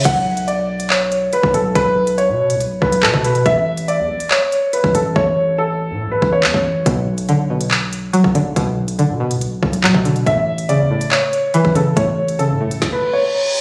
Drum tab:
CC |x---------------|----------------|----------------|----------------|
HH |x--xx--x--x-x-x-|x--xx--xx--x--xx|x--xx--x--x-x-x-|----------------|
CP |--------x-------|------------x---|--------x-------|------------x---|
SD |----------------|----------------|----------------|----------------|
BD |o------------o--|o---------o--o--|o------------o--|o---------o--o--|

CC |----------------|----------------|----------------|----------------|
HH |x--xx--x--x-x-x-|x--xx--xx--x--xx|x--xx--x--x-x-x-|x--xx--x--------|
CP |--------x-------|------------x---|--------x-------|----------------|
SD |----------------|----------------|----------------|--------o-------|
BD |o------------o--|o---------o--o--|o------------o--|o-------o-------|